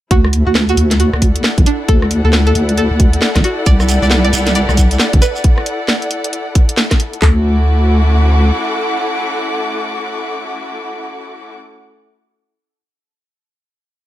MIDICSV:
0, 0, Header, 1, 7, 480
1, 0, Start_track
1, 0, Key_signature, 2, "major"
1, 0, Tempo, 444444
1, 118, Time_signature, 4, 2, 24, 8
1, 15195, End_track
2, 0, Start_track
2, 0, Title_t, "String section"
2, 0, Program_c, 0, 48
2, 112, Note_on_c, 0, 64, 78
2, 349, Note_on_c, 0, 69, 67
2, 959, Note_on_c, 0, 78, 73
2, 1059, Note_on_c, 0, 74, 83
2, 7784, Note_off_c, 0, 64, 0
2, 7796, Note_off_c, 0, 78, 0
2, 7797, Note_off_c, 0, 69, 0
2, 7797, Note_on_c, 0, 64, 71
2, 7799, Note_off_c, 0, 74, 0
2, 7888, Note_on_c, 0, 69, 75
2, 7970, Note_on_c, 0, 86, 76
2, 8021, Note_on_c, 0, 78, 75
2, 12458, Note_off_c, 0, 64, 0
2, 12459, Note_off_c, 0, 69, 0
2, 12459, Note_off_c, 0, 78, 0
2, 12461, Note_off_c, 0, 86, 0
2, 15195, End_track
3, 0, Start_track
3, 0, Title_t, "Synth pluck"
3, 0, Program_c, 1, 84
3, 119, Note_on_c, 1, 66, 96
3, 356, Note_off_c, 1, 66, 0
3, 503, Note_on_c, 1, 66, 83
3, 644, Note_off_c, 1, 66, 0
3, 748, Note_on_c, 1, 66, 91
3, 983, Note_off_c, 1, 66, 0
3, 1078, Note_on_c, 1, 66, 84
3, 1255, Note_off_c, 1, 66, 0
3, 1799, Note_on_c, 1, 62, 87
3, 1975, Note_off_c, 1, 62, 0
3, 2034, Note_on_c, 1, 69, 95
3, 2274, Note_off_c, 1, 69, 0
3, 2427, Note_on_c, 1, 69, 88
3, 2565, Note_off_c, 1, 69, 0
3, 2665, Note_on_c, 1, 69, 94
3, 2902, Note_off_c, 1, 69, 0
3, 2999, Note_on_c, 1, 69, 84
3, 3176, Note_off_c, 1, 69, 0
3, 3717, Note_on_c, 1, 66, 90
3, 3894, Note_off_c, 1, 66, 0
3, 3957, Note_on_c, 1, 74, 102
3, 4195, Note_off_c, 1, 74, 0
3, 4345, Note_on_c, 1, 74, 84
3, 4484, Note_off_c, 1, 74, 0
3, 4585, Note_on_c, 1, 74, 93
3, 4822, Note_off_c, 1, 74, 0
3, 4918, Note_on_c, 1, 74, 84
3, 5095, Note_off_c, 1, 74, 0
3, 5636, Note_on_c, 1, 71, 90
3, 5814, Note_off_c, 1, 71, 0
3, 7799, Note_on_c, 1, 69, 96
3, 12887, Note_off_c, 1, 69, 0
3, 15195, End_track
4, 0, Start_track
4, 0, Title_t, "Violin section"
4, 0, Program_c, 2, 48
4, 3956, Note_on_c, 2, 62, 69
4, 3957, Note_on_c, 2, 59, 75
4, 3957, Note_on_c, 2, 64, 69
4, 3957, Note_on_c, 2, 67, 83
4, 5858, Note_off_c, 2, 59, 0
4, 5858, Note_off_c, 2, 62, 0
4, 5858, Note_off_c, 2, 64, 0
4, 5858, Note_off_c, 2, 67, 0
4, 7797, Note_on_c, 2, 64, 69
4, 7797, Note_on_c, 2, 66, 86
4, 7798, Note_on_c, 2, 57, 77
4, 7798, Note_on_c, 2, 61, 70
4, 12458, Note_off_c, 2, 57, 0
4, 12458, Note_off_c, 2, 64, 0
4, 12458, Note_off_c, 2, 66, 0
4, 12459, Note_off_c, 2, 61, 0
4, 15195, End_track
5, 0, Start_track
5, 0, Title_t, "Wobble bass"
5, 0, Program_c, 3, 39
5, 117, Note_on_c, 3, 38, 96
5, 466, Note_off_c, 3, 38, 0
5, 505, Note_on_c, 3, 38, 79
5, 813, Note_off_c, 3, 38, 0
5, 836, Note_on_c, 3, 38, 80
5, 1186, Note_off_c, 3, 38, 0
5, 1224, Note_on_c, 3, 38, 81
5, 1533, Note_off_c, 3, 38, 0
5, 1704, Note_on_c, 3, 33, 96
5, 1782, Note_off_c, 3, 33, 0
5, 2037, Note_on_c, 3, 38, 93
5, 2386, Note_off_c, 3, 38, 0
5, 2422, Note_on_c, 3, 38, 79
5, 2732, Note_off_c, 3, 38, 0
5, 2754, Note_on_c, 3, 38, 78
5, 3105, Note_off_c, 3, 38, 0
5, 3143, Note_on_c, 3, 38, 80
5, 3452, Note_off_c, 3, 38, 0
5, 3625, Note_on_c, 3, 33, 95
5, 3702, Note_off_c, 3, 33, 0
5, 3958, Note_on_c, 3, 36, 97
5, 4307, Note_off_c, 3, 36, 0
5, 4344, Note_on_c, 3, 36, 82
5, 4653, Note_off_c, 3, 36, 0
5, 4676, Note_on_c, 3, 36, 79
5, 5026, Note_off_c, 3, 36, 0
5, 5064, Note_on_c, 3, 36, 79
5, 5373, Note_off_c, 3, 36, 0
5, 5546, Note_on_c, 3, 31, 96
5, 5623, Note_off_c, 3, 31, 0
5, 7798, Note_on_c, 3, 38, 94
5, 9194, Note_off_c, 3, 38, 0
5, 15195, End_track
6, 0, Start_track
6, 0, Title_t, "Shekere"
6, 3956, Note_on_c, 9, 82, 57
6, 4064, Note_off_c, 9, 82, 0
6, 4103, Note_on_c, 9, 82, 40
6, 4199, Note_off_c, 9, 82, 0
6, 4199, Note_on_c, 9, 82, 101
6, 4307, Note_off_c, 9, 82, 0
6, 4348, Note_on_c, 9, 82, 40
6, 4437, Note_off_c, 9, 82, 0
6, 4437, Note_on_c, 9, 82, 46
6, 4545, Note_off_c, 9, 82, 0
6, 4681, Note_on_c, 9, 82, 91
6, 4789, Note_off_c, 9, 82, 0
6, 4834, Note_on_c, 9, 82, 39
6, 4914, Note_off_c, 9, 82, 0
6, 4914, Note_on_c, 9, 82, 49
6, 5022, Note_off_c, 9, 82, 0
6, 5066, Note_on_c, 9, 82, 40
6, 5162, Note_off_c, 9, 82, 0
6, 5162, Note_on_c, 9, 82, 93
6, 5270, Note_off_c, 9, 82, 0
6, 5314, Note_on_c, 9, 82, 41
6, 5391, Note_off_c, 9, 82, 0
6, 5391, Note_on_c, 9, 82, 55
6, 5499, Note_off_c, 9, 82, 0
6, 5639, Note_on_c, 9, 82, 94
6, 5747, Note_off_c, 9, 82, 0
6, 5784, Note_on_c, 9, 82, 43
6, 5892, Note_off_c, 9, 82, 0
6, 15195, End_track
7, 0, Start_track
7, 0, Title_t, "Drums"
7, 116, Note_on_c, 9, 42, 59
7, 117, Note_on_c, 9, 36, 111
7, 224, Note_off_c, 9, 42, 0
7, 225, Note_off_c, 9, 36, 0
7, 264, Note_on_c, 9, 37, 68
7, 356, Note_on_c, 9, 46, 99
7, 372, Note_off_c, 9, 37, 0
7, 464, Note_off_c, 9, 46, 0
7, 596, Note_on_c, 9, 38, 108
7, 704, Note_off_c, 9, 38, 0
7, 744, Note_on_c, 9, 42, 34
7, 836, Note_on_c, 9, 46, 92
7, 852, Note_off_c, 9, 42, 0
7, 944, Note_off_c, 9, 46, 0
7, 985, Note_on_c, 9, 38, 57
7, 985, Note_on_c, 9, 42, 60
7, 1077, Note_off_c, 9, 42, 0
7, 1077, Note_on_c, 9, 42, 59
7, 1093, Note_off_c, 9, 38, 0
7, 1185, Note_off_c, 9, 42, 0
7, 1225, Note_on_c, 9, 37, 65
7, 1316, Note_on_c, 9, 46, 104
7, 1317, Note_on_c, 9, 36, 61
7, 1333, Note_off_c, 9, 37, 0
7, 1424, Note_off_c, 9, 46, 0
7, 1425, Note_off_c, 9, 36, 0
7, 1464, Note_on_c, 9, 42, 62
7, 1556, Note_on_c, 9, 38, 115
7, 1572, Note_off_c, 9, 42, 0
7, 1664, Note_off_c, 9, 38, 0
7, 1704, Note_on_c, 9, 36, 99
7, 1705, Note_on_c, 9, 42, 49
7, 1796, Note_on_c, 9, 46, 88
7, 1812, Note_off_c, 9, 36, 0
7, 1813, Note_off_c, 9, 42, 0
7, 1904, Note_off_c, 9, 46, 0
7, 2036, Note_on_c, 9, 42, 59
7, 2037, Note_on_c, 9, 36, 120
7, 2144, Note_off_c, 9, 42, 0
7, 2145, Note_off_c, 9, 36, 0
7, 2185, Note_on_c, 9, 37, 67
7, 2276, Note_on_c, 9, 46, 98
7, 2293, Note_off_c, 9, 37, 0
7, 2384, Note_off_c, 9, 46, 0
7, 2516, Note_on_c, 9, 38, 117
7, 2624, Note_off_c, 9, 38, 0
7, 2665, Note_on_c, 9, 42, 35
7, 2757, Note_on_c, 9, 46, 91
7, 2773, Note_off_c, 9, 42, 0
7, 2865, Note_off_c, 9, 46, 0
7, 2904, Note_on_c, 9, 42, 58
7, 2997, Note_off_c, 9, 42, 0
7, 2997, Note_on_c, 9, 42, 61
7, 3105, Note_off_c, 9, 42, 0
7, 3237, Note_on_c, 9, 46, 101
7, 3238, Note_on_c, 9, 36, 106
7, 3345, Note_off_c, 9, 46, 0
7, 3346, Note_off_c, 9, 36, 0
7, 3385, Note_on_c, 9, 42, 60
7, 3476, Note_on_c, 9, 38, 121
7, 3493, Note_off_c, 9, 42, 0
7, 3584, Note_off_c, 9, 38, 0
7, 3625, Note_on_c, 9, 36, 61
7, 3625, Note_on_c, 9, 37, 68
7, 3625, Note_on_c, 9, 38, 61
7, 3625, Note_on_c, 9, 42, 50
7, 3716, Note_on_c, 9, 46, 87
7, 3733, Note_off_c, 9, 36, 0
7, 3733, Note_off_c, 9, 37, 0
7, 3733, Note_off_c, 9, 38, 0
7, 3733, Note_off_c, 9, 42, 0
7, 3824, Note_off_c, 9, 46, 0
7, 3956, Note_on_c, 9, 42, 58
7, 3958, Note_on_c, 9, 36, 123
7, 4064, Note_off_c, 9, 42, 0
7, 4066, Note_off_c, 9, 36, 0
7, 4104, Note_on_c, 9, 37, 65
7, 4197, Note_on_c, 9, 46, 94
7, 4212, Note_off_c, 9, 37, 0
7, 4305, Note_off_c, 9, 46, 0
7, 4436, Note_on_c, 9, 38, 119
7, 4544, Note_off_c, 9, 38, 0
7, 4585, Note_on_c, 9, 42, 35
7, 4676, Note_on_c, 9, 46, 89
7, 4693, Note_off_c, 9, 42, 0
7, 4784, Note_off_c, 9, 46, 0
7, 4823, Note_on_c, 9, 38, 62
7, 4823, Note_on_c, 9, 42, 58
7, 4916, Note_off_c, 9, 42, 0
7, 4916, Note_on_c, 9, 42, 59
7, 4931, Note_off_c, 9, 38, 0
7, 5024, Note_off_c, 9, 42, 0
7, 5063, Note_on_c, 9, 37, 67
7, 5155, Note_on_c, 9, 46, 99
7, 5158, Note_on_c, 9, 36, 66
7, 5171, Note_off_c, 9, 37, 0
7, 5263, Note_off_c, 9, 46, 0
7, 5266, Note_off_c, 9, 36, 0
7, 5303, Note_on_c, 9, 42, 61
7, 5395, Note_on_c, 9, 38, 125
7, 5411, Note_off_c, 9, 42, 0
7, 5503, Note_off_c, 9, 38, 0
7, 5544, Note_on_c, 9, 42, 51
7, 5546, Note_on_c, 9, 36, 109
7, 5636, Note_on_c, 9, 46, 87
7, 5652, Note_off_c, 9, 42, 0
7, 5654, Note_off_c, 9, 36, 0
7, 5744, Note_off_c, 9, 46, 0
7, 5876, Note_on_c, 9, 42, 61
7, 5878, Note_on_c, 9, 36, 122
7, 5984, Note_off_c, 9, 42, 0
7, 5986, Note_off_c, 9, 36, 0
7, 6023, Note_on_c, 9, 37, 65
7, 6115, Note_on_c, 9, 46, 94
7, 6131, Note_off_c, 9, 37, 0
7, 6223, Note_off_c, 9, 46, 0
7, 6355, Note_on_c, 9, 38, 120
7, 6463, Note_off_c, 9, 38, 0
7, 6504, Note_on_c, 9, 42, 35
7, 6595, Note_on_c, 9, 46, 92
7, 6612, Note_off_c, 9, 42, 0
7, 6703, Note_off_c, 9, 46, 0
7, 6743, Note_on_c, 9, 42, 61
7, 6836, Note_off_c, 9, 42, 0
7, 6836, Note_on_c, 9, 42, 61
7, 6944, Note_off_c, 9, 42, 0
7, 7077, Note_on_c, 9, 46, 101
7, 7078, Note_on_c, 9, 36, 107
7, 7185, Note_off_c, 9, 46, 0
7, 7186, Note_off_c, 9, 36, 0
7, 7225, Note_on_c, 9, 42, 64
7, 7316, Note_on_c, 9, 38, 127
7, 7333, Note_off_c, 9, 42, 0
7, 7424, Note_off_c, 9, 38, 0
7, 7465, Note_on_c, 9, 37, 67
7, 7465, Note_on_c, 9, 38, 63
7, 7465, Note_on_c, 9, 42, 53
7, 7466, Note_on_c, 9, 36, 61
7, 7558, Note_on_c, 9, 46, 85
7, 7573, Note_off_c, 9, 37, 0
7, 7573, Note_off_c, 9, 38, 0
7, 7573, Note_off_c, 9, 42, 0
7, 7574, Note_off_c, 9, 36, 0
7, 7666, Note_off_c, 9, 46, 0
7, 7705, Note_on_c, 9, 42, 34
7, 7798, Note_on_c, 9, 36, 106
7, 7798, Note_on_c, 9, 39, 91
7, 7813, Note_off_c, 9, 42, 0
7, 7906, Note_off_c, 9, 36, 0
7, 7906, Note_off_c, 9, 39, 0
7, 15195, End_track
0, 0, End_of_file